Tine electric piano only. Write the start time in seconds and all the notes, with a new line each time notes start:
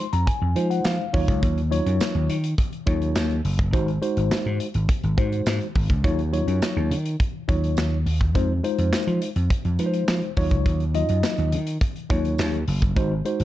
0.00 C6
0.13 A#5
0.27 G#5
0.55 G#3 D#4 F4 C5
0.70 F#5
0.85 F5
1.13 F#3 D#4 F4 C#5
1.71 F#3 D#4 F4 C#5
2.86 F#3 D#4 F4 C#5
3.73 G#3 D#4 F#4 C5
4.01 G#3 D#4 F#4 C5
5.17 G#3 D#4 F#4 C5
6.04 F#3 D#4 F4 C#5
6.32 F#3 D#4 F4 C#5
7.48 F#3 D#4 F4 C#5
8.35 G#3 D#4 F4 C5
8.63 G#3 D#4 F4 C5
9.79 G#3 D#4 F4 B4
9.86 C5
10.37 F#3 D#4 F4 C#5
10.94 F#3 D#4 F4 D#5
12.10 F#3 D#4 F4 C#5
12.96 G#3 D#4 F#4 C5
13.25 G#3 D#4 F#4 C5